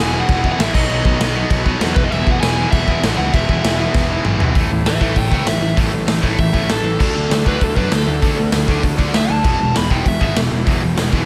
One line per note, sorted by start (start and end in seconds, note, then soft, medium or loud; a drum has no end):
0.00 0.20 E1 medium
0.00 0.13 E2 loud
0.00 0.27 E2 loud
0.00 0.12 B2 loud
0.00 0.28 B2 loud
0.00 0.14 E3 loud
0.00 0.29 E3 loud
0.00 0.13 G#3 loud
0.00 0.14 B3 loud
0.00 0.12 E4 loud
0.00 0.18 G#5 loud
0.13 0.27 E2 medium
0.13 0.28 B2 medium
0.13 0.28 E3 medium
0.13 0.29 G#3 medium
0.13 0.30 B3 medium
0.13 0.30 E4 medium
0.21 0.49 F#5 loud
0.28 0.51 E1 medium
0.28 0.43 E2 medium
0.28 0.42 B2 medium
0.28 0.44 E3 loud
0.28 0.44 G#3 loud
0.28 0.44 B3 medium
0.28 0.43 E4 loud
0.28 kick loud
0.28 crash medium
0.44 0.58 E2 loud
0.44 0.59 B2 loud
0.44 0.58 E3 loud
0.44 0.58 G#3 loud
0.44 0.60 B3 medium
0.44 0.59 E4 loud
0.44 kick medium
0.52 0.59 F#5 medium
0.59 0.70 A1 medium
0.59 0.74 E2 medium
0.59 0.73 B2 medium
0.59 0.73 E3 medium
0.59 0.74 G#3 medium
0.59 0.75 B3 loud
0.59 0.74 E4 loud
0.59 0.74 E5 medium
0.59 snare loud
0.59 crash medium
0.74 0.86 B1 medium
0.74 0.90 B2 medium
0.74 0.90 D#3 loud
0.74 0.89 F#3 loud
0.74 0.90 B3 loud
0.74 0.88 D#4 loud
0.74 1.62 D#5 medium
0.74 kick loud
0.74 crash loud
0.89 1.00 B1 loud
0.89 1.02 B2 medium
0.89 1.03 D#3 medium
0.89 1.04 F#3 loud
0.89 1.05 B3 loud
0.89 1.05 D#4 loud
0.89 crash medium
1.04 1.16 B1 medium
1.04 1.20 B2 medium
1.04 1.19 D#3 medium
1.04 1.19 F#3 medium
1.04 1.19 B3 loud
1.04 1.18 D#4 medium
1.04 kick medium
1.19 1.42 B1 medium
1.19 1.33 B2 medium
1.19 1.34 D#3 loud
1.19 1.34 F#3 loud
1.19 1.35 B3 loud
1.19 1.35 D#4 loud
1.19 snare loud
1.19 crash medium
1.34 1.51 B2 medium
1.34 1.50 D#3 medium
1.34 1.50 F#3 medium
1.34 1.50 B3 medium
1.34 1.48 D#4 loud
1.38 1.96 B2 medium
1.50 1.73 B1 loud
1.50 1.64 B2 medium
1.50 1.65 D#3 medium
1.50 1.65 F#3 loud
1.50 1.66 B3 medium
1.50 1.66 D#4 medium
1.50 kick loud
1.50 crash medium
1.66 1.82 B2 medium
1.66 1.81 D#3 medium
1.66 1.81 F#3 loud
1.66 1.81 B3 loud
1.66 1.80 D#4 loud
1.66 kick medium
1.80 1.92 E2 loud
1.80 1.96 B2 medium
1.80 1.95 D#3 medium
1.80 1.96 F#3 medium
1.80 1.97 B3 medium
1.80 1.95 D#4 loud
1.80 snare loud
1.80 crash medium
1.95 2.07 E1 medium
1.95 2.12 E2 loud
1.95 2.10 B2 loud
1.95 2.13 E3 loud
1.95 2.12 G#3 loud
1.95 2.12 B3 loud
1.95 2.11 E4 loud
1.95 2.03 B4 loud
1.95 kick loud
2.04 2.10 D#5 loud
2.10 2.23 E1 loud
2.10 2.26 E2 medium
2.10 2.26 B2 loud
2.10 2.26 E3 loud
2.10 2.26 G#3 loud
2.10 2.27 B3 loud
2.10 2.27 E4 loud
2.10 2.34 E5 medium
2.10 crash medium
2.26 2.38 E1 loud
2.26 2.42 E2 medium
2.26 2.41 B2 medium
2.26 2.42 E3 loud
2.26 2.42 G#3 medium
2.26 2.41 B3 loud
2.26 2.41 E4 loud
2.26 kick medium
2.32 2.40 F#5 loud
2.40 2.65 E1 loud
2.40 2.56 E2 medium
2.40 2.56 B2 medium
2.40 2.56 E3 loud
2.40 2.56 G#3 loud
2.40 2.56 B3 loud
2.40 2.57 E4 loud
2.40 2.69 G#5 loud
2.40 snare loud
2.40 crash medium
2.57 2.71 E2 medium
2.57 2.71 B2 loud
2.57 2.73 E3 medium
2.57 2.72 G#3 medium
2.57 2.72 B3 medium
2.57 2.72 E4 loud
2.71 2.95 E1 loud
2.71 2.86 E2 medium
2.71 2.87 B2 medium
2.71 2.87 E3 medium
2.71 2.87 G#3 medium
2.71 2.87 B3 loud
2.71 2.89 E4 loud
2.71 3.00 E5 loud
2.71 kick loud
2.71 crash medium
2.87 3.02 E2 loud
2.87 3.02 B2 loud
2.87 3.04 E3 loud
2.87 3.03 G#3 loud
2.87 3.02 B3 loud
2.87 3.02 E4 loud
2.87 kick loud
3.03 3.14 A1 medium
3.03 3.16 E2 medium
3.03 3.17 B2 medium
3.03 3.17 E3 medium
3.03 3.17 G#3 loud
3.03 3.18 B3 loud
3.03 3.19 E4 loud
3.03 snare loud
3.03 crash medium
3.17 3.29 C#2 loud
3.17 3.31 E2 loud
3.17 3.32 B2 loud
3.17 3.33 E3 loud
3.17 3.33 G#3 loud
3.17 3.33 B3 medium
3.17 3.34 E4 loud
3.17 3.34 F#5 loud
3.32 3.45 E1 loud
3.32 3.48 E2 loud
3.32 3.47 B2 loud
3.32 3.49 E3 medium
3.32 3.48 G#3 loud
3.32 3.48 B3 medium
3.32 3.47 E4 loud
3.32 4.25 E5 medium
3.32 kick loud
3.32 crash medium
3.48 3.60 E1 medium
3.48 3.62 E2 medium
3.48 3.62 B2 medium
3.48 3.63 E3 medium
3.48 3.63 G#3 medium
3.48 3.64 B3 medium
3.48 3.64 E4 loud
3.48 kick medium
3.63 3.87 E1 loud
3.63 3.78 E2 loud
3.63 3.78 B2 medium
3.63 3.79 E3 loud
3.63 3.79 G#3 loud
3.63 3.78 B3 loud
3.63 3.78 E4 loud
3.63 snare loud
3.63 crash medium
3.79 3.92 E2 medium
3.79 3.93 B2 loud
3.79 3.93 E3 medium
3.79 3.94 G#3 loud
3.79 3.94 B3 medium
3.79 3.95 E4 medium
3.94 4.17 E1 loud
3.94 4.08 E2 medium
3.94 4.08 B2 medium
3.94 4.10 E3 medium
3.94 4.09 G#3 medium
3.94 4.09 B3 medium
3.94 4.08 E4 loud
3.94 kick loud
3.94 snare medium
4.09 4.22 E2 medium
4.09 4.23 B2 loud
4.09 4.22 E3 medium
4.09 4.23 G#3 medium
4.09 4.23 B3 loud
4.09 4.24 E4 loud
4.23 4.36 A1 medium
4.23 4.39 E2 medium
4.23 4.38 B2 loud
4.23 4.40 E3 medium
4.23 4.40 G#3 medium
4.23 4.39 B3 medium
4.23 4.39 E4 medium
4.23 mid tom loud
4.39 4.51 B1 loud
4.39 4.54 E2 medium
4.39 4.54 B2 medium
4.39 4.54 E3 medium
4.39 4.55 G#3 medium
4.39 4.54 B3 medium
4.39 4.54 E4 loud
4.39 floor tom loud
4.55 4.67 A1 medium
4.55 4.69 A2 medium
4.55 4.70 E3 medium
4.55 4.70 A3 medium
4.55 kick loud
4.55 open hi-hat medium
4.70 4.82 A1 medium
4.70 4.84 A2 medium
4.70 4.85 E3 medium
4.85 4.97 A1 medium
4.85 4.99 A2 medium
4.85 5.00 E3 medium
4.85 5.00 B4 medium
4.85 5.01 E5 medium
4.85 snare loud
4.85 open hi-hat medium
5.01 5.13 A1 medium
5.01 5.15 A2 medium
5.01 5.16 E3 medium
5.01 5.16 A3 medium
5.01 5.15 B4 medium
5.01 5.16 E5 medium
5.01 kick medium
5.16 5.27 A1 medium
5.16 5.30 A2 medium
5.16 5.30 E3 medium
5.16 5.31 E5 medium
5.16 5.32 G5 medium
5.16 kick loud
5.16 open hi-hat medium
5.31 5.43 C#2 medium
5.31 5.45 A2 medium
5.31 5.46 E3 loud
5.31 5.47 A3 loud
5.31 5.47 E5 medium
5.31 kick medium
5.35 5.48 G5 medium
5.45 5.57 A1 medium
5.45 5.60 A2 medium
5.45 5.61 E3 medium
5.45 5.80 A3 medium
5.45 5.77 E5 loud
5.45 snare loud
5.45 open hi-hat medium
5.61 5.73 A1 loud
5.61 5.76 A2 medium
5.61 5.76 E3 medium
5.77 5.89 A1 medium
5.77 5.92 A2 medium
5.77 5.92 E3 medium
5.77 5.92 A3 loud
5.77 kick loud
5.77 open hi-hat medium
5.92 6.04 A1 medium
5.92 6.07 A2 medium
5.92 6.07 E3 medium
6.08 6.19 A1 medium
6.08 6.22 A2 medium
6.08 6.22 E3 medium
6.08 snare loud
6.08 open hi-hat medium
6.23 6.35 A1 medium
6.23 6.37 A2 medium
6.23 6.38 E3 medium
6.23 6.38 A3 medium
6.23 kick medium
6.38 6.50 A1 medium
6.38 6.52 A2 medium
6.38 6.52 E3 medium
6.38 6.69 E5 loud
6.38 kick loud
6.38 open hi-hat medium
6.53 6.65 A1 medium
6.53 6.67 A2 medium
6.53 6.68 E3 medium
6.53 6.69 A3 medium
6.53 kick loud
6.68 6.80 A1 medium
6.68 6.83 A2 medium
6.68 6.83 E3 loud
6.68 7.02 A3 medium
6.68 6.99 A4 medium
6.68 snare loud
6.68 open hi-hat medium
6.84 7.00 A1 medium
6.84 6.98 A2 medium
6.84 6.99 E3 medium
6.99 7.11 D2 medium
6.99 7.13 D3 medium
6.99 7.14 A3 loud
6.99 7.14 D4 medium
6.99 7.45 A4 medium
6.99 kick loud
6.99 crash loud
7.14 7.26 D2 medium
7.14 7.29 D3 medium
7.14 7.29 A3 medium
7.29 7.41 D2 medium
7.29 7.44 D3 medium
7.29 7.44 A3 medium
7.29 snare loud
7.29 open hi-hat medium
7.45 7.57 D2 medium
7.45 7.60 D3 medium
7.45 7.60 A3 medium
7.45 7.60 D4 loud
7.45 7.63 B4 medium
7.45 kick medium
7.61 7.72 D2 medium
7.61 7.75 D3 medium
7.61 7.75 A3 medium
7.61 7.77 A4 medium
7.61 kick loud
7.61 open hi-hat medium
7.76 7.88 F#2 medium
7.76 7.91 D3 medium
7.76 7.91 A3 medium
7.76 7.91 D4 loud
7.76 7.93 B4 medium
7.76 kick medium
7.92 8.03 D2 medium
7.92 8.06 D3 medium
7.92 8.06 A3 medium
7.92 8.23 D4 medium
7.92 8.81 A4 loud
7.92 snare loud
7.92 open hi-hat medium
8.07 8.18 D2 medium
8.07 8.21 D3 medium
8.07 8.21 A3 medium
8.22 8.34 D2 medium
8.22 8.36 D3 medium
8.22 8.37 A3 medium
8.22 8.37 D4 medium
8.22 kick loud
8.22 open hi-hat medium
8.37 8.49 D2 medium
8.37 8.51 D3 medium
8.37 8.52 A3 medium
8.52 8.64 D2 medium
8.52 8.66 D3 medium
8.52 8.66 A3 loud
8.52 snare loud
8.52 open hi-hat medium
8.67 8.80 D2 medium
8.67 8.82 D3 medium
8.67 8.82 A3 medium
8.67 8.83 D4 loud
8.67 kick medium
8.71 9.12 D3 medium
8.83 8.95 D2 medium
8.83 8.97 D3 medium
8.83 8.97 A3 medium
8.83 kick loud
8.83 open hi-hat medium
8.98 9.10 D2 medium
8.98 9.13 D3 medium
8.98 9.13 A3 medium
8.98 9.13 D4 loud
8.98 kick medium
9.14 9.25 D2 medium
9.14 9.28 D3 medium
9.14 9.28 A3 medium
9.14 9.45 D4 medium
9.14 9.31 E5 loud
9.14 snare loud
9.14 open hi-hat medium
9.29 9.41 D2 loud
9.29 9.43 D3 medium
9.29 9.43 A3 medium
9.29 9.75 A5 medium
9.43 9.56 E1 medium
9.43 9.59 E2 medium
9.43 9.59 B2 loud
9.43 9.58 E3 medium
9.43 9.58 G#3 medium
9.43 9.59 B3 loud
9.43 kick loud
9.43 crash medium
9.48 9.89 E3 loud
9.59 9.72 E1 medium
9.59 9.73 E2 medium
9.59 9.74 B2 medium
9.59 9.73 E3 medium
9.59 9.73 G#3 medium
9.74 9.87 E1 medium
9.74 9.89 E2 medium
9.74 9.89 B2 medium
9.74 9.88 E3 medium
9.74 9.89 G#3 medium
9.74 9.91 B5 loud
9.74 snare loud
9.74 open hi-hat medium
9.90 10.02 E1 medium
9.90 10.04 E2 medium
9.90 10.04 B2 medium
9.90 10.04 E3 medium
9.90 10.05 G#3 loud
9.90 10.05 B3 medium
9.90 10.08 G5 loud
9.90 kick medium
10.05 10.17 E1 medium
10.05 10.18 E2 medium
10.05 10.19 B2 medium
10.05 10.19 E3 medium
10.05 10.19 G#3 medium
10.05 10.22 E5 loud
10.05 kick loud
10.05 open hi-hat medium
10.19 10.33 G#1 medium
10.19 10.34 E2 medium
10.19 10.34 B2 loud
10.19 10.35 E3 medium
10.19 10.35 G#3 medium
10.19 10.35 B3 medium
10.19 kick medium
10.24 10.37 E5 loud
10.35 10.48 E1 medium
10.35 10.49 E2 medium
10.35 10.49 B2 medium
10.35 10.50 E3 medium
10.35 10.50 G#3 medium
10.35 snare loud
10.35 open hi-hat medium
10.50 10.63 E1 medium
10.50 10.65 E2 medium
10.50 10.65 B2 medium
10.50 10.65 E3 medium
10.50 10.65 G#3 medium
10.66 10.78 E1 medium
10.66 10.79 E2 medium
10.66 10.80 B2 medium
10.66 10.81 E3 medium
10.66 10.81 G#3 medium
10.66 10.82 B3 medium
10.66 kick loud
10.66 open hi-hat medium
10.81 10.94 E1 medium
10.81 10.94 E2 medium
10.81 10.95 B2 medium
10.81 10.96 E3 medium
10.81 10.96 G#3 medium
10.95 11.09 E1 medium
10.95 11.10 E2 medium
10.95 11.11 B2 medium
10.95 11.12 E3 medium
10.95 11.12 G#3 medium
10.95 snare loud
10.95 open hi-hat medium
11.12 11.24 E1 medium
11.12 11.25 E2 medium
11.12 11.25 B2 medium
11.12 11.25 E3 medium
11.12 11.25 G#3 loud
11.12 11.25 B3 loud
11.12 kick medium
11.16 11.25 E2 medium